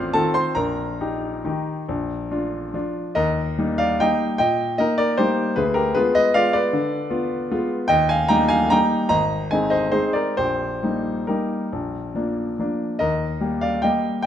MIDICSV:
0, 0, Header, 1, 2, 480
1, 0, Start_track
1, 0, Key_signature, -3, "major"
1, 0, Tempo, 437637
1, 613, Time_signature, 3, 2, 24, 8
1, 2070, Tempo, 424929
1, 4470, Tempo, 397088
1, 5910, Tempo, 381437
1, 8310, Tempo, 400534
1, 11190, Tempo, 438917
1, 14550, Tempo, 412939
1, 16497, End_track
2, 0, Start_track
2, 0, Title_t, "Grand piano"
2, 0, Program_c, 0, 0
2, 0, Control_c, 0, 64, 127
2, 0, Note_on_c, 0, 33, 72
2, 0, Note_on_c, 0, 60, 52
2, 0, Note_on_c, 0, 65, 57
2, 0, Note_on_c, 0, 72, 63
2, 0, Note_on_c, 0, 74, 77
2, 0, Note_on_c, 0, 84, 82
2, 0, Note_on_c, 0, 86, 97
2, 0, Note_on_c, 0, 89, 112
2, 111, Note_off_c, 0, 65, 0
2, 114, Note_off_c, 0, 60, 0
2, 121, Note_off_c, 0, 72, 0
2, 146, Note_off_c, 0, 84, 0
2, 148, Note_on_c, 0, 81, 99
2, 153, Control_c, 0, 64, 0
2, 154, Note_on_c, 0, 69, 73
2, 155, Note_on_c, 0, 60, 52
2, 160, Note_on_c, 0, 51, 55
2, 161, Note_off_c, 0, 33, 0
2, 166, Note_off_c, 0, 74, 0
2, 167, Note_off_c, 0, 86, 0
2, 168, Note_off_c, 0, 89, 0
2, 168, Note_on_c, 0, 65, 59
2, 366, Note_off_c, 0, 69, 0
2, 374, Note_on_c, 0, 84, 85
2, 375, Note_on_c, 0, 72, 64
2, 379, Note_off_c, 0, 81, 0
2, 575, Note_off_c, 0, 60, 0
2, 577, Note_off_c, 0, 51, 0
2, 581, Note_off_c, 0, 65, 0
2, 596, Note_off_c, 0, 72, 0
2, 601, Note_on_c, 0, 82, 82
2, 612, Note_off_c, 0, 84, 0
2, 612, Note_on_c, 0, 34, 62
2, 617, Note_on_c, 0, 70, 67
2, 835, Control_c, 0, 64, 127
2, 1085, Note_off_c, 0, 34, 0
2, 1106, Note_on_c, 0, 63, 47
2, 1109, Note_on_c, 0, 67, 53
2, 1547, Note_off_c, 0, 63, 0
2, 1548, Note_off_c, 0, 67, 0
2, 1587, Note_on_c, 0, 63, 46
2, 1588, Note_on_c, 0, 51, 50
2, 1594, Note_on_c, 0, 67, 51
2, 1602, Control_c, 0, 64, 0
2, 2025, Note_off_c, 0, 63, 0
2, 2026, Note_off_c, 0, 51, 0
2, 2029, Note_off_c, 0, 67, 0
2, 2067, Note_on_c, 0, 34, 59
2, 2282, Control_c, 0, 64, 127
2, 2525, Note_off_c, 0, 34, 0
2, 2550, Note_on_c, 0, 62, 43
2, 2555, Note_on_c, 0, 65, 51
2, 2989, Note_off_c, 0, 70, 0
2, 2992, Note_off_c, 0, 62, 0
2, 2994, Note_off_c, 0, 65, 0
2, 3026, Note_off_c, 0, 82, 0
2, 3029, Note_on_c, 0, 53, 47
2, 3036, Note_on_c, 0, 65, 49
2, 3039, Note_on_c, 0, 62, 48
2, 3051, Control_c, 0, 64, 0
2, 3475, Note_off_c, 0, 53, 0
2, 3479, Note_off_c, 0, 65, 0
2, 3481, Note_off_c, 0, 62, 0
2, 3496, Note_on_c, 0, 75, 89
2, 3504, Note_on_c, 0, 70, 68
2, 3509, Note_on_c, 0, 39, 62
2, 3739, Control_c, 0, 64, 127
2, 3973, Note_off_c, 0, 39, 0
2, 3987, Note_on_c, 0, 55, 42
2, 3988, Note_on_c, 0, 58, 45
2, 3995, Note_on_c, 0, 63, 48
2, 4177, Note_off_c, 0, 70, 0
2, 4209, Note_on_c, 0, 77, 85
2, 4219, Note_off_c, 0, 75, 0
2, 4223, Note_on_c, 0, 74, 60
2, 4420, Note_off_c, 0, 55, 0
2, 4421, Note_off_c, 0, 58, 0
2, 4424, Note_off_c, 0, 63, 0
2, 4447, Note_off_c, 0, 74, 0
2, 4457, Note_off_c, 0, 77, 0
2, 4458, Note_on_c, 0, 79, 94
2, 4465, Note_on_c, 0, 75, 66
2, 4474, Note_on_c, 0, 55, 46
2, 4478, Note_on_c, 0, 63, 51
2, 4480, Control_c, 0, 64, 0
2, 4480, Note_on_c, 0, 58, 45
2, 4901, Note_off_c, 0, 79, 0
2, 4906, Note_off_c, 0, 55, 0
2, 4908, Note_off_c, 0, 63, 0
2, 4909, Note_off_c, 0, 58, 0
2, 4915, Note_off_c, 0, 75, 0
2, 4919, Note_on_c, 0, 79, 91
2, 4938, Note_on_c, 0, 75, 67
2, 4940, Note_on_c, 0, 46, 57
2, 5171, Control_c, 0, 64, 127
2, 5383, Note_off_c, 0, 75, 0
2, 5401, Note_on_c, 0, 75, 83
2, 5404, Note_off_c, 0, 46, 0
2, 5408, Note_off_c, 0, 79, 0
2, 5409, Note_on_c, 0, 58, 42
2, 5422, Note_on_c, 0, 70, 65
2, 5428, Note_on_c, 0, 63, 47
2, 5436, Control_c, 0, 64, 0
2, 5637, Note_on_c, 0, 74, 87
2, 5638, Note_off_c, 0, 70, 0
2, 5655, Note_off_c, 0, 75, 0
2, 5656, Note_on_c, 0, 70, 65
2, 5852, Note_off_c, 0, 58, 0
2, 5862, Note_off_c, 0, 63, 0
2, 5876, Note_on_c, 0, 72, 86
2, 5886, Note_off_c, 0, 70, 0
2, 5887, Note_on_c, 0, 67, 68
2, 5888, Note_on_c, 0, 55, 46
2, 5894, Note_off_c, 0, 74, 0
2, 5898, Note_on_c, 0, 58, 47
2, 5903, Note_on_c, 0, 63, 51
2, 6325, Note_off_c, 0, 55, 0
2, 6331, Note_off_c, 0, 58, 0
2, 6334, Note_off_c, 0, 63, 0
2, 6339, Note_off_c, 0, 67, 0
2, 6357, Note_on_c, 0, 71, 82
2, 6367, Note_off_c, 0, 72, 0
2, 6372, Note_on_c, 0, 38, 63
2, 6372, Note_on_c, 0, 68, 62
2, 6588, Note_on_c, 0, 70, 85
2, 6595, Note_off_c, 0, 68, 0
2, 6604, Note_off_c, 0, 71, 0
2, 6606, Note_on_c, 0, 67, 60
2, 6608, Control_c, 0, 64, 127
2, 6834, Note_off_c, 0, 67, 0
2, 6837, Note_off_c, 0, 38, 0
2, 6843, Note_off_c, 0, 70, 0
2, 6845, Note_on_c, 0, 71, 89
2, 6855, Note_on_c, 0, 68, 63
2, 6865, Note_on_c, 0, 56, 44
2, 6865, Note_on_c, 0, 59, 50
2, 6870, Note_on_c, 0, 65, 53
2, 6873, Control_c, 0, 64, 0
2, 7083, Note_off_c, 0, 68, 0
2, 7087, Note_off_c, 0, 71, 0
2, 7100, Note_on_c, 0, 75, 95
2, 7106, Note_on_c, 0, 71, 70
2, 7303, Note_off_c, 0, 56, 0
2, 7303, Note_off_c, 0, 59, 0
2, 7306, Note_off_c, 0, 65, 0
2, 7333, Note_off_c, 0, 71, 0
2, 7344, Note_on_c, 0, 77, 100
2, 7348, Note_off_c, 0, 75, 0
2, 7357, Note_on_c, 0, 74, 77
2, 7360, Note_on_c, 0, 56, 53
2, 7367, Note_on_c, 0, 65, 53
2, 7370, Note_on_c, 0, 59, 48
2, 7563, Note_off_c, 0, 74, 0
2, 7582, Note_on_c, 0, 74, 85
2, 7589, Note_off_c, 0, 77, 0
2, 7606, Note_on_c, 0, 71, 64
2, 7783, Note_off_c, 0, 56, 0
2, 7787, Note_off_c, 0, 65, 0
2, 7789, Note_off_c, 0, 59, 0
2, 7831, Note_on_c, 0, 50, 65
2, 8023, Control_c, 0, 64, 127
2, 8297, Note_off_c, 0, 50, 0
2, 8302, Note_on_c, 0, 65, 54
2, 8304, Note_on_c, 0, 59, 51
2, 8743, Note_off_c, 0, 65, 0
2, 8744, Note_off_c, 0, 59, 0
2, 8794, Note_on_c, 0, 56, 55
2, 8795, Note_on_c, 0, 59, 54
2, 8795, Note_on_c, 0, 65, 57
2, 8807, Control_c, 0, 64, 0
2, 8992, Note_off_c, 0, 71, 0
2, 9029, Note_off_c, 0, 74, 0
2, 9218, Note_off_c, 0, 56, 0
2, 9219, Note_off_c, 0, 59, 0
2, 9219, Note_off_c, 0, 65, 0
2, 9229, Note_on_c, 0, 79, 103
2, 9247, Note_on_c, 0, 75, 81
2, 9249, Note_on_c, 0, 39, 65
2, 9471, Note_off_c, 0, 75, 0
2, 9480, Note_off_c, 0, 79, 0
2, 9484, Note_on_c, 0, 80, 89
2, 9488, Control_c, 0, 64, 127
2, 9502, Note_on_c, 0, 77, 70
2, 9714, Note_off_c, 0, 39, 0
2, 9717, Note_on_c, 0, 82, 104
2, 9722, Note_off_c, 0, 77, 0
2, 9724, Note_on_c, 0, 79, 78
2, 9730, Note_off_c, 0, 80, 0
2, 9730, Note_on_c, 0, 55, 49
2, 9733, Note_on_c, 0, 58, 46
2, 9739, Note_on_c, 0, 63, 54
2, 9957, Note_off_c, 0, 79, 0
2, 9957, Note_on_c, 0, 80, 94
2, 9971, Note_off_c, 0, 82, 0
2, 9972, Note_on_c, 0, 77, 72
2, 10178, Note_off_c, 0, 55, 0
2, 10179, Note_off_c, 0, 58, 0
2, 10182, Note_off_c, 0, 63, 0
2, 10207, Note_off_c, 0, 77, 0
2, 10216, Note_off_c, 0, 80, 0
2, 10216, Note_on_c, 0, 82, 102
2, 10227, Note_on_c, 0, 55, 49
2, 10230, Note_on_c, 0, 79, 77
2, 10232, Note_on_c, 0, 58, 53
2, 10237, Note_on_c, 0, 63, 55
2, 10246, Control_c, 0, 64, 0
2, 10660, Note_off_c, 0, 55, 0
2, 10663, Note_off_c, 0, 58, 0
2, 10665, Note_off_c, 0, 82, 0
2, 10666, Note_off_c, 0, 63, 0
2, 10676, Note_off_c, 0, 79, 0
2, 10683, Note_on_c, 0, 82, 105
2, 10689, Note_on_c, 0, 75, 76
2, 10695, Note_on_c, 0, 32, 66
2, 10917, Control_c, 0, 64, 127
2, 11145, Note_off_c, 0, 75, 0
2, 11167, Note_off_c, 0, 32, 0
2, 11176, Note_off_c, 0, 82, 0
2, 11183, Note_on_c, 0, 80, 75
2, 11193, Note_on_c, 0, 56, 45
2, 11197, Note_on_c, 0, 75, 54
2, 11204, Note_on_c, 0, 60, 43
2, 11206, Note_on_c, 0, 63, 47
2, 11378, Note_off_c, 0, 75, 0
2, 11395, Note_on_c, 0, 75, 79
2, 11406, Note_on_c, 0, 72, 62
2, 11416, Note_off_c, 0, 80, 0
2, 11613, Note_off_c, 0, 56, 0
2, 11614, Note_off_c, 0, 72, 0
2, 11619, Note_off_c, 0, 60, 0
2, 11620, Note_off_c, 0, 63, 0
2, 11630, Note_on_c, 0, 72, 82
2, 11636, Note_on_c, 0, 60, 42
2, 11640, Note_on_c, 0, 68, 61
2, 11643, Note_off_c, 0, 75, 0
2, 11643, Note_on_c, 0, 56, 45
2, 11648, Note_on_c, 0, 63, 47
2, 11672, Control_c, 0, 64, 0
2, 11866, Note_on_c, 0, 74, 67
2, 11871, Note_off_c, 0, 68, 0
2, 11883, Note_off_c, 0, 72, 0
2, 11891, Note_on_c, 0, 70, 56
2, 12081, Note_off_c, 0, 60, 0
2, 12084, Note_off_c, 0, 56, 0
2, 12087, Note_off_c, 0, 63, 0
2, 12116, Note_off_c, 0, 70, 0
2, 12120, Note_off_c, 0, 74, 0
2, 12129, Note_on_c, 0, 72, 84
2, 12139, Note_on_c, 0, 67, 59
2, 12141, Note_on_c, 0, 34, 52
2, 12374, Control_c, 0, 64, 127
2, 12607, Note_off_c, 0, 34, 0
2, 12628, Note_on_c, 0, 55, 37
2, 12631, Note_on_c, 0, 58, 37
2, 12639, Note_on_c, 0, 63, 41
2, 13073, Note_off_c, 0, 67, 0
2, 13076, Note_off_c, 0, 55, 0
2, 13077, Note_off_c, 0, 58, 0
2, 13081, Note_off_c, 0, 63, 0
2, 13112, Note_off_c, 0, 72, 0
2, 13112, Note_on_c, 0, 70, 55
2, 13125, Control_c, 0, 64, 0
2, 13129, Note_on_c, 0, 58, 37
2, 13129, Note_on_c, 0, 67, 41
2, 13131, Note_on_c, 0, 55, 39
2, 13137, Note_on_c, 0, 63, 44
2, 13559, Note_off_c, 0, 55, 0
2, 13559, Note_off_c, 0, 58, 0
2, 13562, Note_off_c, 0, 63, 0
2, 13608, Note_on_c, 0, 34, 51
2, 13829, Control_c, 0, 64, 127
2, 14058, Note_off_c, 0, 34, 0
2, 14068, Note_on_c, 0, 53, 34
2, 14077, Note_on_c, 0, 58, 37
2, 14081, Note_on_c, 0, 62, 39
2, 14507, Note_off_c, 0, 53, 0
2, 14512, Note_off_c, 0, 58, 0
2, 14513, Note_off_c, 0, 67, 0
2, 14514, Note_off_c, 0, 62, 0
2, 14549, Note_off_c, 0, 70, 0
2, 14554, Note_on_c, 0, 53, 37
2, 14557, Note_on_c, 0, 58, 40
2, 14560, Control_c, 0, 64, 0
2, 14572, Note_on_c, 0, 62, 41
2, 14999, Note_off_c, 0, 53, 0
2, 15000, Note_off_c, 0, 58, 0
2, 15008, Note_off_c, 0, 62, 0
2, 15019, Note_on_c, 0, 75, 77
2, 15032, Note_on_c, 0, 70, 57
2, 15039, Note_on_c, 0, 39, 51
2, 15291, Control_c, 0, 64, 127
2, 15502, Note_off_c, 0, 39, 0
2, 15502, Note_on_c, 0, 55, 39
2, 15509, Note_on_c, 0, 58, 39
2, 15514, Note_on_c, 0, 67, 40
2, 15705, Note_off_c, 0, 70, 0
2, 15744, Note_on_c, 0, 77, 70
2, 15745, Note_off_c, 0, 75, 0
2, 15756, Note_on_c, 0, 74, 52
2, 15943, Note_off_c, 0, 55, 0
2, 15947, Note_off_c, 0, 58, 0
2, 15949, Note_off_c, 0, 67, 0
2, 15980, Note_off_c, 0, 74, 0
2, 15983, Note_on_c, 0, 79, 77
2, 15991, Note_off_c, 0, 77, 0
2, 16003, Note_on_c, 0, 55, 41
2, 16006, Note_on_c, 0, 58, 39
2, 16009, Note_on_c, 0, 75, 55
2, 16012, Note_on_c, 0, 67, 43
2, 16015, Control_c, 0, 64, 0
2, 16427, Note_off_c, 0, 55, 0
2, 16429, Note_off_c, 0, 58, 0
2, 16432, Note_off_c, 0, 67, 0
2, 16437, Note_off_c, 0, 79, 0
2, 16445, Note_off_c, 0, 75, 0
2, 16455, Note_on_c, 0, 79, 85
2, 16497, Note_off_c, 0, 79, 0
2, 16497, End_track
0, 0, End_of_file